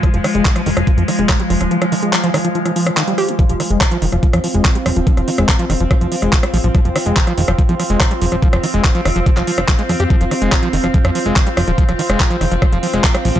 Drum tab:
HH |xxoxxxoxxxoxxxox|xxoxxxoxxxoxxxox|xxoxxxoxxxoxxxox|xxoxxxoxxxoxxxox|
CP |----x-------x---|----x-------x---|----x-------x---|----x-------x---|
SD |r-r--r-r--r-r--r|-r--r-r--r-r--r-|--r-r--r-r--r-r-|-r-r--r-r--r-r--|
BD |o---o---o---o---|----------------|o---o---o---o---|o---o---o---o---|

HH |xxoxxxoxxxoxxxox|xxoxxxoxxxoxxxox|xxoxxxoxxxoxxxox|xxoxxxoxxxoxxxox|
CP |----x-------x---|----x----x--x---|----x-------x---|----x-------x---|
SD |r-r--r-r--r-r--r|-r--r-r--r-r--r-|--r-r--r-r--r-r-|-r-r--r-r--r-r--|
BD |o---o---o---o---|o---o---o---o---|o---o---o---o---|o---o---o---o---|